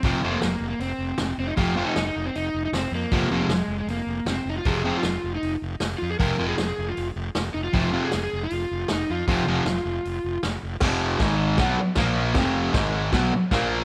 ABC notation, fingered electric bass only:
X:1
M:4/4
L:1/8
Q:1/4=156
K:Fm
V:1 name="Fingered electric bass" clef=bass
F,,, F,,, F,,, F,,, F,,, F,,, F,,, F,,, | F,,,2 F,,, F,,, F,,, F,,, F,,, F,, | F,,, F,,, F,,, F,,, F,,, F,,, F,,, F,,, | F,,,2 F,,, F,,, F,,, F,,, F,,, F,, |
F,,, F,,, F,,, F,,, F,,, F,,, F,,, F,,, | F,,,2 F,,, F,,, F,,, F,,, F,,, F,, | F,,, F,,, F,,, F,,, F,,, F,,, F,,, F,,, | F,,,2 A,,,2 =B,,, z _B,,,2 |
F,,,2 A,,,2 =B,,, z _B,,,2 |]